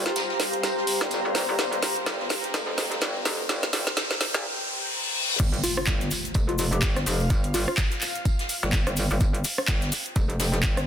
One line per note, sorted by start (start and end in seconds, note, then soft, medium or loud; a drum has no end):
0.00 4.44 G4 medium
0.00 4.44 C5 medium
0.00 2.68 F5 medium
0.00 4.44 A#5 medium
0.00 riser medium
0.06 0.12 F4 medium
0.06 snare medium
0.06 closed hi-hat soft
0.16 snare loud
0.16 closed hi-hat medium
0.16 tambourine medium
0.30 snare medium
0.39 snare medium
0.39 open hi-hat medium
0.39 tambourine medium
0.53 closed hi-hat medium
0.63 snare medium
0.63 closed hi-hat medium
0.63 tambourine medium
0.78 snare soft
0.87 open hi-hat loud
0.87 tambourine medium
1.01 1.23 G1 loud
1.01 snare medium
1.01 snare soft
1.11 snare loud
1.11 closed hi-hat medium
1.11 tambourine medium
1.25 1.46 G1 medium
1.25 closed hi-hat soft
1.35 snare medium
1.35 open hi-hat medium
1.35 tambourine medium
1.49 1.57 G1 loud
1.59 1.81 G1 medium
1.59 snare medium
1.59 closed hi-hat medium
1.59 tambourine medium
1.73 closed hi-hat soft
1.82 snare medium
1.82 open hi-hat loud
1.82 tambourine medium
1.96 closed hi-hat soft
2.06 2.29 G1 loud
2.06 snare medium
2.06 snare loud
2.06 closed hi-hat medium
2.06 tambourine medium
2.20 snare medium
2.29 snare medium
2.29 open hi-hat medium
2.29 tambourine medium
2.44 closed hi-hat soft
2.52 3.00 F1 loud
2.52 4.45 G5 medium
2.52 snare medium
2.52 closed hi-hat medium
2.52 tambourine medium
2.77 snare medium
2.77 open hi-hat loud
2.77 tambourine medium
2.92 snare soft
2.92 closed hi-hat medium
3.01 3.24 G1 loud
3.01 snare medium
3.01 closed hi-hat medium
3.01 tambourine medium
3.15 closed hi-hat soft
3.25 3.48 F1 medium
3.25 snare medium
3.25 open hi-hat loud
3.25 tambourine medium
3.49 3.85 G1 loud
3.49 snare medium
3.49 closed hi-hat medium
3.49 tambourine medium
3.63 snare medium
3.63 closed hi-hat soft
3.73 snare loud
3.73 open hi-hat loud
3.73 tambourine medium
3.87 snare medium
3.97 snare loud
3.97 closed hi-hat medium
3.97 tambourine medium
4.11 snare medium
4.21 snare loud
4.21 open hi-hat medium
4.21 tambourine medium
4.34 4.44 A#1 loud
4.34 snare medium
4.34 closed hi-hat soft
4.44 reverse cymbal medium
5.39 5.62 G1 medium
5.39 kick loud
5.39 closed hi-hat medium
5.39 tambourine medium
5.39 crash loud
5.39 impact medium
5.39 maracas medium
5.54 closed hi-hat medium
5.63 5.72 F4 medium
5.63 8.99 F5 medium
5.63 open hi-hat loud
5.63 tambourine medium
5.63 maracas medium
5.77 5.84 F4 medium
5.77 cross-stick medium
5.77 closed hi-hat soft
5.77 maracas soft
5.87 6.10 G1 loud
5.87 kick loud
5.87 snare loud
5.87 clap loud
5.87 closed hi-hat medium
5.87 tambourine medium
5.87 maracas soft
6.01 snare medium
6.01 closed hi-hat medium
6.01 maracas soft
6.11 open hi-hat medium
6.11 tambourine medium
6.11 maracas medium
6.25 closed hi-hat soft
6.25 maracas soft
6.34 6.81 F1 loud
6.34 kick loud
6.34 closed hi-hat medium
6.34 tambourine medium
6.34 maracas soft
6.49 6.55 F4 medium
6.49 closed hi-hat medium
6.58 6.68 F4 medium
6.58 open hi-hat loud
6.58 tambourine medium
6.58 maracas loud
6.72 6.87 G4 medium
6.72 closed hi-hat soft
6.72 maracas soft
6.82 7.05 G1 loud
6.82 kick loud
6.82 snare loud
6.82 clap loud
6.82 closed hi-hat medium
6.82 tambourine medium
6.82 maracas soft
6.96 cross-stick medium
6.96 snare soft
6.96 closed hi-hat medium
6.96 maracas soft
7.06 7.29 F1 medium
7.06 open hi-hat medium
7.06 tambourine medium
7.06 maracas medium
7.20 closed hi-hat soft
7.20 maracas soft
7.30 7.66 G1 loud
7.30 kick loud
7.30 closed hi-hat medium
7.30 tambourine medium
7.30 maracas medium
7.44 closed hi-hat medium
7.54 7.63 F4 medium
7.54 open hi-hat loud
7.54 tambourine medium
7.54 maracas medium
7.68 7.74 F4 medium
7.68 cross-stick medium
7.68 maracas soft
7.77 kick loud
7.77 snare loud
7.77 clap loud
7.77 closed hi-hat medium
7.77 tambourine medium
7.77 maracas medium
7.91 snare medium
7.91 closed hi-hat soft
7.91 maracas soft
8.01 clap soft
8.01 open hi-hat medium
8.01 tambourine medium
8.01 maracas loud
8.15 closed hi-hat soft
8.15 maracas soft
8.25 kick loud
8.25 closed hi-hat medium
8.25 tambourine medium
8.25 maracas medium
8.39 snare soft
8.39 closed hi-hat medium
8.49 open hi-hat loud
8.49 tambourine medium
8.49 maracas medium
8.63 8.85 G1 loud
8.63 snare soft
8.63 closed hi-hat soft
8.63 maracas soft
8.73 kick loud
8.73 snare loud
8.73 clap loud
8.73 closed hi-hat medium
8.73 tambourine medium
8.73 maracas medium
8.87 9.08 G1 medium
8.87 10.87 G5 medium
8.87 cross-stick medium
8.87 closed hi-hat medium
8.87 closed hi-hat soft
8.87 maracas soft
8.97 open hi-hat loud
8.97 tambourine medium
8.97 maracas loud
9.10 9.19 G1 medium
9.10 maracas soft
9.20 9.43 G1 loud
9.20 kick loud
9.20 closed hi-hat medium
9.20 tambourine medium
9.20 maracas medium
9.34 closed hi-hat medium
9.44 open hi-hat loud
9.44 tambourine medium
9.44 maracas loud
9.58 cross-stick medium
9.58 closed hi-hat soft
9.58 maracas soft
9.68 9.90 G1 loud
9.68 kick loud
9.68 snare loud
9.68 clap loud
9.68 closed hi-hat medium
9.68 tambourine medium
9.68 maracas soft
9.81 snare medium
9.81 closed hi-hat soft
9.81 maracas soft
9.92 open hi-hat loud
9.92 tambourine medium
9.92 maracas loud
10.06 closed hi-hat soft
10.06 maracas soft
10.16 10.62 F1 loud
10.16 kick loud
10.16 closed hi-hat medium
10.16 tambourine medium
10.16 maracas medium
10.30 closed hi-hat medium
10.39 snare loud
10.39 open hi-hat loud
10.39 tambourine medium
10.39 maracas medium
10.53 snare soft
10.53 closed hi-hat soft
10.53 maracas soft
10.63 10.86 G1 loud
10.63 kick loud
10.63 clap loud
10.63 closed hi-hat medium
10.63 tambourine medium
10.63 maracas medium
10.77 cross-stick medium
10.77 closed hi-hat medium
10.77 closed hi-hat soft
10.77 maracas soft